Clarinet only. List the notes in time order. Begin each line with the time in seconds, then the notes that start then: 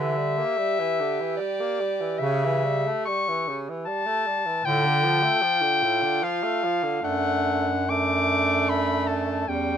Already playing: E5
1.37 D5
2.19 E5
3.05 C#6
3.85 A5
4.65 G5
6.23 F5
7.04 F#5
7.90 D6
8.69 B5
9.07 A5
9.48 G5